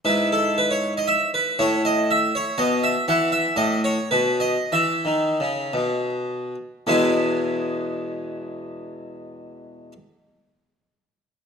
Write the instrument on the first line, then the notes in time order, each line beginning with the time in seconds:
harpsichord
0.05 G#2 E4 B4
0.32 A4
0.58 B4
0.71 C#5
0.97 D#5
1.08 E5
1.34 B4
1.59 A2 E4 C#5
1.85 D#5
2.11 E5
2.35 C#5
2.58 B2 D#5
2.84 E5
3.08 E3 E4 F#5
3.32 E5
3.56 A2 D#5
3.84 C#5
4.11 B2 B4
4.40 D#5
4.72 E3 E5
5.05 D#3
5.40 C#3
5.73 B2
6.87 E2 B2 G#3 B3 E4 G#4